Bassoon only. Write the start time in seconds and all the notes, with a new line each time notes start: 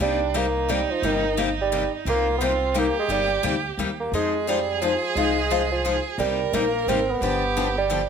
0.02 G3
0.37 A#3
0.71 G3
0.91 F3
1.05 D#3
1.61 G3
2.09 A#3
2.38 B3
2.43 C4
2.78 A#3
2.99 G#3
3.12 G3
4.00 A#3
4.15 G#3
4.48 G3
4.82 F3
5.16 G#3
5.72 F3
6.19 G3
6.55 A#3
6.88 C4
7.10 B3
7.78 G3